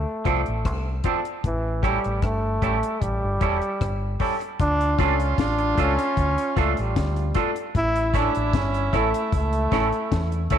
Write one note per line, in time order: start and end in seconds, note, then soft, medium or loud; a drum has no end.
0.00 1.01 A3 medium
0.25 0.44 C2 medium
0.25 0.40 F3 medium
0.25 0.40 C4 medium
0.25 0.40 D4 medium
0.25 0.40 F4 medium
0.25 0.40 A4 medium
0.25 0.40 C5 medium
0.25 0.41 D5 loud
0.25 kick medium
0.25 closed hi-hat medium
0.46 0.66 A1 medium
0.46 closed hi-hat soft
0.65 1.00 C2 medium
0.65 kick loud
0.65 cross-stick loud
0.65 closed hi-hat medium
1.04 1.19 F3 medium
1.04 1.19 C4 medium
1.04 1.20 D4 medium
1.04 1.19 F4 medium
1.04 1.20 A4 medium
1.04 1.19 C5 medium
1.04 1.20 D5 medium
1.04 kick medium
1.04 closed hi-hat medium
1.25 closed hi-hat medium
1.44 1.97 A1 medium
1.44 1.86 E3 loud
1.44 kick loud
1.44 closed hi-hat medium
1.83 1.97 G3 medium
1.83 2.25 G3 medium
1.83 1.98 C#4 loud
1.83 1.98 E4 medium
1.83 1.98 G4 loud
1.83 1.98 A4 medium
1.83 1.98 C#5 loud
1.83 kick loud
1.83 closed hi-hat medium
2.04 2.21 A1 medium
2.04 closed hi-hat soft
2.22 2.58 G1 loud
2.22 3.04 A3 loud
2.22 kick loud
2.22 cross-stick loud
2.22 closed hi-hat medium
2.62 2.81 A1 medium
2.62 2.77 G3 medium
2.62 2.77 C#4 medium
2.62 2.77 E4 medium
2.62 2.77 G4 medium
2.62 2.77 A4 medium
2.62 2.77 C#5 medium
2.62 kick medium
2.62 closed hi-hat medium
2.83 closed hi-hat medium
3.02 3.20 A1 medium
3.02 4.20 G3 medium
3.02 kick medium
3.02 closed hi-hat medium
3.24 3.39 G1 medium
3.40 3.60 E1 medium
3.40 3.55 G3 medium
3.40 3.56 C#4 medium
3.40 3.56 E4 medium
3.40 3.56 G4 medium
3.40 3.56 A4 medium
3.40 3.56 C#5 loud
3.40 kick loud
3.40 closed hi-hat medium
3.62 closed hi-hat soft
3.81 4.16 G1 medium
3.81 kick loud
3.81 cross-stick loud
3.81 closed hi-hat medium
4.20 4.34 G3 medium
4.20 4.35 C#4 medium
4.20 4.35 E4 medium
4.20 4.35 G4 medium
4.20 4.35 A4 medium
4.20 4.35 C#5 medium
4.20 kick medium
4.20 open hi-hat medium
4.40 muted clean electric guitar stroke soft
4.40 closed hi-hat medium
4.60 4.94 D2 medium
4.60 5.02 D4 loud
4.60 7.32 F4 medium
4.60 kick loud
4.60 closed hi-hat medium
4.81 closed hi-hat medium
4.98 5.33 C#2 medium
4.98 5.13 A3 medium
4.98 5.42 C#4 loud
4.98 5.14 D4 medium
4.98 5.13 F4 loud
4.98 5.14 F4 loud
4.98 5.14 A4 medium
4.98 5.14 A4 loud
4.98 5.14 D5 loud
4.98 kick loud
4.98 closed hi-hat medium
5.20 closed hi-hat medium
5.38 5.73 A1 medium
5.38 5.82 D4 loud
5.38 kick loud
5.38 snare loud
5.38 closed hi-hat loud
5.58 muted clean electric guitar stroke soft
5.58 closed hi-hat soft
5.77 5.96 C#2 loud
5.77 5.92 A3 medium
5.77 6.60 C#4 loud
5.77 5.92 D4 medium
5.77 5.92 F4 medium
5.77 5.93 F4 medium
5.77 5.93 A4 medium
5.77 5.93 D5 loud
5.77 kick loud
5.77 closed hi-hat medium
5.99 closed hi-hat medium
6.17 6.35 D2 loud
6.17 kick loud
6.17 closed hi-hat medium
6.38 closed hi-hat medium
6.56 6.75 C#2 medium
6.56 6.71 A3 medium
6.56 6.82 A3 medium
6.56 6.71 D4 medium
6.56 6.71 F4 medium
6.56 6.72 F4 medium
6.56 6.71 A4 medium
6.56 6.72 A4 medium
6.56 6.72 D5 loud
6.56 kick loud
6.56 closed hi-hat medium
6.77 6.94 A1 medium
6.77 closed hi-hat soft
6.81 7.37 G3 medium
6.96 7.31 D2 loud
6.96 kick loud
6.96 snare loud
6.96 closed hi-hat medium
7.16 closed hi-hat soft
7.35 7.50 A3 medium
7.35 7.50 D4 medium
7.35 7.50 F4 medium
7.35 7.50 A4 medium
7.35 7.51 A4 medium
7.35 7.51 D5 loud
7.35 kick loud
7.35 closed hi-hat medium
7.56 closed hi-hat medium
7.75 8.28 A1 loud
7.75 10.47 E4 medium
7.75 8.19 E4 loud
7.75 kick loud
7.75 closed hi-hat medium
7.96 closed hi-hat medium
8.13 8.28 A3 medium
8.13 8.29 C#4 loud
8.13 8.57 D4 loud
8.13 8.29 E4 loud
8.13 8.29 E4 medium
8.13 8.29 A4 medium
8.13 8.29 C#5 loud
8.13 kick loud
8.13 closed hi-hat medium
8.35 8.52 A1 medium
8.35 closed hi-hat medium
8.53 8.88 G1 medium
8.53 8.98 C#4 loud
8.53 kick loud
8.53 snare loud
8.53 closed hi-hat loud
8.74 closed hi-hat medium
8.93 9.11 A1 loud
8.93 9.08 A3 medium
8.93 9.34 A3 loud
8.93 9.08 C#4 medium
8.93 9.08 E4 loud
8.93 9.08 E4 medium
8.93 9.08 A4 medium
8.93 9.08 C#5 loud
8.93 kick medium
8.93 closed hi-hat medium
9.14 closed hi-hat medium
9.32 9.67 C#2 medium
9.32 10.49 A3 loud
9.32 kick loud
9.32 closed hi-hat medium
9.53 closed hi-hat medium
9.71 9.90 A1 medium
9.71 9.86 A3 medium
9.71 9.87 C#4 medium
9.71 9.86 E4 loud
9.71 9.87 E4 loud
9.71 9.87 A4 loud
9.71 9.87 C#5 loud
9.71 kick loud
9.71 snare medium
9.71 closed hi-hat medium
9.93 closed hi-hat soft
10.12 10.46 E2 loud
10.12 kick loud
10.12 snare loud
10.12 closed hi-hat medium
10.32 closed hi-hat medium
10.50 10.58 C#2 loud
10.50 10.58 A3 medium
10.50 10.58 C#4 medium
10.50 10.58 E4 medium
10.50 10.58 A4 medium
10.50 10.58 A4 loud
10.50 10.58 C#5 loud
10.50 kick medium
10.50 closed hi-hat medium